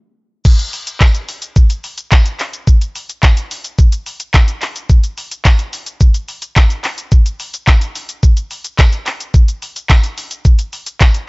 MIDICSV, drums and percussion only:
0, 0, Header, 1, 2, 480
1, 0, Start_track
1, 0, Tempo, 555556
1, 391, Time_signature, 4, 2, 24, 8
1, 9754, End_track
2, 0, Start_track
2, 0, Title_t, "Drums"
2, 390, Note_on_c, 9, 36, 116
2, 390, Note_on_c, 9, 49, 108
2, 390, Note_on_c, 9, 82, 74
2, 476, Note_off_c, 9, 49, 0
2, 476, Note_off_c, 9, 82, 0
2, 477, Note_off_c, 9, 36, 0
2, 513, Note_on_c, 9, 42, 55
2, 513, Note_on_c, 9, 82, 52
2, 600, Note_off_c, 9, 42, 0
2, 600, Note_off_c, 9, 82, 0
2, 633, Note_on_c, 9, 46, 76
2, 633, Note_on_c, 9, 82, 55
2, 719, Note_off_c, 9, 46, 0
2, 719, Note_off_c, 9, 82, 0
2, 752, Note_on_c, 9, 42, 74
2, 752, Note_on_c, 9, 82, 76
2, 839, Note_off_c, 9, 42, 0
2, 839, Note_off_c, 9, 82, 0
2, 868, Note_on_c, 9, 39, 117
2, 870, Note_on_c, 9, 36, 117
2, 872, Note_on_c, 9, 54, 80
2, 872, Note_on_c, 9, 82, 66
2, 955, Note_off_c, 9, 39, 0
2, 957, Note_off_c, 9, 36, 0
2, 958, Note_off_c, 9, 54, 0
2, 959, Note_off_c, 9, 82, 0
2, 991, Note_on_c, 9, 42, 59
2, 991, Note_on_c, 9, 82, 59
2, 1077, Note_off_c, 9, 42, 0
2, 1077, Note_off_c, 9, 82, 0
2, 1112, Note_on_c, 9, 46, 90
2, 1112, Note_on_c, 9, 82, 60
2, 1198, Note_off_c, 9, 46, 0
2, 1198, Note_off_c, 9, 82, 0
2, 1227, Note_on_c, 9, 42, 78
2, 1227, Note_on_c, 9, 82, 76
2, 1314, Note_off_c, 9, 42, 0
2, 1314, Note_off_c, 9, 82, 0
2, 1349, Note_on_c, 9, 82, 78
2, 1350, Note_on_c, 9, 36, 119
2, 1436, Note_off_c, 9, 36, 0
2, 1436, Note_off_c, 9, 82, 0
2, 1469, Note_on_c, 9, 42, 64
2, 1469, Note_on_c, 9, 82, 64
2, 1555, Note_off_c, 9, 42, 0
2, 1555, Note_off_c, 9, 82, 0
2, 1590, Note_on_c, 9, 46, 70
2, 1590, Note_on_c, 9, 82, 49
2, 1676, Note_off_c, 9, 46, 0
2, 1676, Note_off_c, 9, 82, 0
2, 1708, Note_on_c, 9, 42, 80
2, 1708, Note_on_c, 9, 82, 85
2, 1795, Note_off_c, 9, 42, 0
2, 1795, Note_off_c, 9, 82, 0
2, 1828, Note_on_c, 9, 82, 80
2, 1830, Note_on_c, 9, 39, 117
2, 1831, Note_on_c, 9, 36, 122
2, 1831, Note_on_c, 9, 54, 98
2, 1915, Note_off_c, 9, 82, 0
2, 1916, Note_off_c, 9, 39, 0
2, 1918, Note_off_c, 9, 36, 0
2, 1918, Note_off_c, 9, 54, 0
2, 1950, Note_on_c, 9, 42, 53
2, 1950, Note_on_c, 9, 82, 57
2, 2036, Note_off_c, 9, 42, 0
2, 2036, Note_off_c, 9, 82, 0
2, 2069, Note_on_c, 9, 46, 68
2, 2069, Note_on_c, 9, 82, 51
2, 2072, Note_on_c, 9, 39, 66
2, 2155, Note_off_c, 9, 46, 0
2, 2155, Note_off_c, 9, 82, 0
2, 2158, Note_off_c, 9, 39, 0
2, 2190, Note_on_c, 9, 42, 67
2, 2190, Note_on_c, 9, 82, 69
2, 2276, Note_off_c, 9, 42, 0
2, 2276, Note_off_c, 9, 82, 0
2, 2310, Note_on_c, 9, 36, 115
2, 2311, Note_on_c, 9, 82, 74
2, 2396, Note_off_c, 9, 36, 0
2, 2397, Note_off_c, 9, 82, 0
2, 2432, Note_on_c, 9, 42, 54
2, 2432, Note_on_c, 9, 82, 54
2, 2518, Note_off_c, 9, 42, 0
2, 2518, Note_off_c, 9, 82, 0
2, 2553, Note_on_c, 9, 46, 78
2, 2553, Note_on_c, 9, 82, 55
2, 2639, Note_off_c, 9, 46, 0
2, 2639, Note_off_c, 9, 82, 0
2, 2673, Note_on_c, 9, 42, 75
2, 2673, Note_on_c, 9, 82, 76
2, 2760, Note_off_c, 9, 42, 0
2, 2760, Note_off_c, 9, 82, 0
2, 2789, Note_on_c, 9, 39, 117
2, 2791, Note_on_c, 9, 36, 117
2, 2791, Note_on_c, 9, 54, 78
2, 2793, Note_on_c, 9, 82, 70
2, 2876, Note_off_c, 9, 39, 0
2, 2877, Note_off_c, 9, 36, 0
2, 2878, Note_off_c, 9, 54, 0
2, 2880, Note_off_c, 9, 82, 0
2, 2911, Note_on_c, 9, 42, 55
2, 2911, Note_on_c, 9, 82, 56
2, 2998, Note_off_c, 9, 42, 0
2, 2998, Note_off_c, 9, 82, 0
2, 3033, Note_on_c, 9, 46, 92
2, 3033, Note_on_c, 9, 82, 64
2, 3120, Note_off_c, 9, 46, 0
2, 3120, Note_off_c, 9, 82, 0
2, 3148, Note_on_c, 9, 42, 80
2, 3148, Note_on_c, 9, 82, 76
2, 3234, Note_off_c, 9, 42, 0
2, 3234, Note_off_c, 9, 82, 0
2, 3270, Note_on_c, 9, 36, 115
2, 3270, Note_on_c, 9, 82, 78
2, 3356, Note_off_c, 9, 36, 0
2, 3357, Note_off_c, 9, 82, 0
2, 3389, Note_on_c, 9, 42, 66
2, 3389, Note_on_c, 9, 82, 66
2, 3476, Note_off_c, 9, 42, 0
2, 3476, Note_off_c, 9, 82, 0
2, 3510, Note_on_c, 9, 46, 72
2, 3510, Note_on_c, 9, 82, 48
2, 3597, Note_off_c, 9, 46, 0
2, 3597, Note_off_c, 9, 82, 0
2, 3628, Note_on_c, 9, 42, 82
2, 3628, Note_on_c, 9, 82, 79
2, 3714, Note_off_c, 9, 42, 0
2, 3714, Note_off_c, 9, 82, 0
2, 3749, Note_on_c, 9, 82, 80
2, 3750, Note_on_c, 9, 39, 119
2, 3751, Note_on_c, 9, 54, 101
2, 3752, Note_on_c, 9, 36, 125
2, 3835, Note_off_c, 9, 82, 0
2, 3837, Note_off_c, 9, 39, 0
2, 3837, Note_off_c, 9, 54, 0
2, 3838, Note_off_c, 9, 36, 0
2, 3871, Note_on_c, 9, 42, 56
2, 3871, Note_on_c, 9, 82, 55
2, 3957, Note_off_c, 9, 42, 0
2, 3957, Note_off_c, 9, 82, 0
2, 3988, Note_on_c, 9, 46, 69
2, 3988, Note_on_c, 9, 82, 51
2, 3991, Note_on_c, 9, 39, 67
2, 4075, Note_off_c, 9, 46, 0
2, 4075, Note_off_c, 9, 82, 0
2, 4078, Note_off_c, 9, 39, 0
2, 4111, Note_on_c, 9, 42, 71
2, 4111, Note_on_c, 9, 82, 67
2, 4197, Note_off_c, 9, 42, 0
2, 4197, Note_off_c, 9, 82, 0
2, 4230, Note_on_c, 9, 36, 118
2, 4230, Note_on_c, 9, 82, 69
2, 4316, Note_off_c, 9, 36, 0
2, 4316, Note_off_c, 9, 82, 0
2, 4351, Note_on_c, 9, 42, 55
2, 4351, Note_on_c, 9, 82, 56
2, 4438, Note_off_c, 9, 42, 0
2, 4438, Note_off_c, 9, 82, 0
2, 4472, Note_on_c, 9, 46, 77
2, 4472, Note_on_c, 9, 82, 55
2, 4558, Note_off_c, 9, 46, 0
2, 4558, Note_off_c, 9, 82, 0
2, 4592, Note_on_c, 9, 42, 70
2, 4592, Note_on_c, 9, 82, 71
2, 4678, Note_off_c, 9, 42, 0
2, 4678, Note_off_c, 9, 82, 0
2, 4708, Note_on_c, 9, 39, 121
2, 4710, Note_on_c, 9, 36, 121
2, 4710, Note_on_c, 9, 54, 77
2, 4712, Note_on_c, 9, 82, 64
2, 4795, Note_off_c, 9, 39, 0
2, 4796, Note_off_c, 9, 54, 0
2, 4797, Note_off_c, 9, 36, 0
2, 4799, Note_off_c, 9, 82, 0
2, 4829, Note_on_c, 9, 42, 56
2, 4829, Note_on_c, 9, 82, 55
2, 4916, Note_off_c, 9, 42, 0
2, 4916, Note_off_c, 9, 82, 0
2, 4951, Note_on_c, 9, 46, 90
2, 4951, Note_on_c, 9, 82, 63
2, 5037, Note_off_c, 9, 46, 0
2, 5037, Note_off_c, 9, 82, 0
2, 5067, Note_on_c, 9, 42, 75
2, 5067, Note_on_c, 9, 82, 73
2, 5153, Note_off_c, 9, 42, 0
2, 5153, Note_off_c, 9, 82, 0
2, 5188, Note_on_c, 9, 82, 77
2, 5189, Note_on_c, 9, 36, 115
2, 5274, Note_off_c, 9, 82, 0
2, 5276, Note_off_c, 9, 36, 0
2, 5308, Note_on_c, 9, 42, 66
2, 5308, Note_on_c, 9, 82, 64
2, 5394, Note_off_c, 9, 42, 0
2, 5394, Note_off_c, 9, 82, 0
2, 5430, Note_on_c, 9, 46, 70
2, 5430, Note_on_c, 9, 82, 49
2, 5516, Note_off_c, 9, 46, 0
2, 5516, Note_off_c, 9, 82, 0
2, 5547, Note_on_c, 9, 42, 85
2, 5547, Note_on_c, 9, 82, 83
2, 5633, Note_off_c, 9, 42, 0
2, 5633, Note_off_c, 9, 82, 0
2, 5669, Note_on_c, 9, 82, 78
2, 5671, Note_on_c, 9, 39, 118
2, 5671, Note_on_c, 9, 54, 98
2, 5672, Note_on_c, 9, 36, 125
2, 5756, Note_off_c, 9, 82, 0
2, 5757, Note_off_c, 9, 39, 0
2, 5757, Note_off_c, 9, 54, 0
2, 5758, Note_off_c, 9, 36, 0
2, 5791, Note_on_c, 9, 42, 56
2, 5791, Note_on_c, 9, 82, 53
2, 5877, Note_off_c, 9, 42, 0
2, 5877, Note_off_c, 9, 82, 0
2, 5908, Note_on_c, 9, 46, 69
2, 5908, Note_on_c, 9, 82, 51
2, 5911, Note_on_c, 9, 39, 67
2, 5994, Note_off_c, 9, 46, 0
2, 5994, Note_off_c, 9, 82, 0
2, 5997, Note_off_c, 9, 39, 0
2, 6030, Note_on_c, 9, 42, 67
2, 6030, Note_on_c, 9, 82, 70
2, 6116, Note_off_c, 9, 42, 0
2, 6116, Note_off_c, 9, 82, 0
2, 6148, Note_on_c, 9, 82, 71
2, 6150, Note_on_c, 9, 36, 118
2, 6235, Note_off_c, 9, 82, 0
2, 6236, Note_off_c, 9, 36, 0
2, 6271, Note_on_c, 9, 42, 57
2, 6271, Note_on_c, 9, 82, 54
2, 6357, Note_off_c, 9, 42, 0
2, 6357, Note_off_c, 9, 82, 0
2, 6390, Note_on_c, 9, 46, 80
2, 6390, Note_on_c, 9, 82, 55
2, 6477, Note_off_c, 9, 46, 0
2, 6477, Note_off_c, 9, 82, 0
2, 6511, Note_on_c, 9, 42, 75
2, 6511, Note_on_c, 9, 82, 77
2, 6598, Note_off_c, 9, 42, 0
2, 6598, Note_off_c, 9, 82, 0
2, 6628, Note_on_c, 9, 39, 118
2, 6631, Note_on_c, 9, 36, 124
2, 6632, Note_on_c, 9, 82, 69
2, 6633, Note_on_c, 9, 54, 79
2, 6714, Note_off_c, 9, 39, 0
2, 6717, Note_off_c, 9, 36, 0
2, 6718, Note_off_c, 9, 82, 0
2, 6719, Note_off_c, 9, 54, 0
2, 6750, Note_on_c, 9, 42, 58
2, 6750, Note_on_c, 9, 82, 58
2, 6836, Note_off_c, 9, 42, 0
2, 6836, Note_off_c, 9, 82, 0
2, 6872, Note_on_c, 9, 46, 89
2, 6872, Note_on_c, 9, 82, 62
2, 6958, Note_off_c, 9, 46, 0
2, 6958, Note_off_c, 9, 82, 0
2, 6988, Note_on_c, 9, 42, 80
2, 6988, Note_on_c, 9, 82, 75
2, 7075, Note_off_c, 9, 42, 0
2, 7075, Note_off_c, 9, 82, 0
2, 7110, Note_on_c, 9, 36, 118
2, 7110, Note_on_c, 9, 82, 78
2, 7197, Note_off_c, 9, 36, 0
2, 7197, Note_off_c, 9, 82, 0
2, 7230, Note_on_c, 9, 42, 66
2, 7230, Note_on_c, 9, 82, 64
2, 7316, Note_off_c, 9, 42, 0
2, 7316, Note_off_c, 9, 82, 0
2, 7350, Note_on_c, 9, 46, 69
2, 7350, Note_on_c, 9, 82, 50
2, 7437, Note_off_c, 9, 46, 0
2, 7437, Note_off_c, 9, 82, 0
2, 7469, Note_on_c, 9, 42, 82
2, 7469, Note_on_c, 9, 82, 86
2, 7555, Note_off_c, 9, 42, 0
2, 7555, Note_off_c, 9, 82, 0
2, 7589, Note_on_c, 9, 82, 78
2, 7591, Note_on_c, 9, 39, 115
2, 7591, Note_on_c, 9, 54, 100
2, 7592, Note_on_c, 9, 36, 120
2, 7676, Note_off_c, 9, 82, 0
2, 7677, Note_off_c, 9, 39, 0
2, 7677, Note_off_c, 9, 54, 0
2, 7678, Note_off_c, 9, 36, 0
2, 7711, Note_on_c, 9, 42, 54
2, 7711, Note_on_c, 9, 82, 54
2, 7797, Note_off_c, 9, 42, 0
2, 7797, Note_off_c, 9, 82, 0
2, 7829, Note_on_c, 9, 46, 70
2, 7829, Note_on_c, 9, 82, 49
2, 7832, Note_on_c, 9, 39, 64
2, 7915, Note_off_c, 9, 46, 0
2, 7915, Note_off_c, 9, 82, 0
2, 7918, Note_off_c, 9, 39, 0
2, 7952, Note_on_c, 9, 42, 67
2, 7952, Note_on_c, 9, 82, 67
2, 8039, Note_off_c, 9, 42, 0
2, 8039, Note_off_c, 9, 82, 0
2, 8071, Note_on_c, 9, 36, 120
2, 8072, Note_on_c, 9, 82, 74
2, 8157, Note_off_c, 9, 36, 0
2, 8158, Note_off_c, 9, 82, 0
2, 8193, Note_on_c, 9, 42, 57
2, 8193, Note_on_c, 9, 82, 55
2, 8280, Note_off_c, 9, 42, 0
2, 8280, Note_off_c, 9, 82, 0
2, 8314, Note_on_c, 9, 46, 76
2, 8314, Note_on_c, 9, 82, 57
2, 8400, Note_off_c, 9, 46, 0
2, 8400, Note_off_c, 9, 82, 0
2, 8434, Note_on_c, 9, 42, 73
2, 8434, Note_on_c, 9, 82, 74
2, 8520, Note_off_c, 9, 42, 0
2, 8520, Note_off_c, 9, 82, 0
2, 8549, Note_on_c, 9, 39, 118
2, 8551, Note_on_c, 9, 36, 124
2, 8551, Note_on_c, 9, 54, 81
2, 8553, Note_on_c, 9, 82, 67
2, 8635, Note_off_c, 9, 39, 0
2, 8637, Note_off_c, 9, 36, 0
2, 8637, Note_off_c, 9, 54, 0
2, 8639, Note_off_c, 9, 82, 0
2, 8671, Note_on_c, 9, 42, 59
2, 8671, Note_on_c, 9, 82, 58
2, 8757, Note_off_c, 9, 42, 0
2, 8757, Note_off_c, 9, 82, 0
2, 8792, Note_on_c, 9, 46, 86
2, 8792, Note_on_c, 9, 82, 62
2, 8879, Note_off_c, 9, 46, 0
2, 8879, Note_off_c, 9, 82, 0
2, 8907, Note_on_c, 9, 42, 78
2, 8907, Note_on_c, 9, 82, 76
2, 8994, Note_off_c, 9, 42, 0
2, 8994, Note_off_c, 9, 82, 0
2, 9029, Note_on_c, 9, 36, 118
2, 9029, Note_on_c, 9, 82, 78
2, 9115, Note_off_c, 9, 82, 0
2, 9116, Note_off_c, 9, 36, 0
2, 9148, Note_on_c, 9, 42, 66
2, 9148, Note_on_c, 9, 82, 63
2, 9235, Note_off_c, 9, 42, 0
2, 9235, Note_off_c, 9, 82, 0
2, 9270, Note_on_c, 9, 46, 70
2, 9270, Note_on_c, 9, 82, 51
2, 9357, Note_off_c, 9, 46, 0
2, 9357, Note_off_c, 9, 82, 0
2, 9388, Note_on_c, 9, 42, 80
2, 9388, Note_on_c, 9, 82, 82
2, 9474, Note_off_c, 9, 42, 0
2, 9474, Note_off_c, 9, 82, 0
2, 9508, Note_on_c, 9, 82, 79
2, 9510, Note_on_c, 9, 39, 122
2, 9510, Note_on_c, 9, 54, 102
2, 9511, Note_on_c, 9, 36, 123
2, 9595, Note_off_c, 9, 82, 0
2, 9596, Note_off_c, 9, 39, 0
2, 9597, Note_off_c, 9, 36, 0
2, 9597, Note_off_c, 9, 54, 0
2, 9629, Note_on_c, 9, 42, 54
2, 9629, Note_on_c, 9, 82, 54
2, 9716, Note_off_c, 9, 42, 0
2, 9716, Note_off_c, 9, 82, 0
2, 9754, End_track
0, 0, End_of_file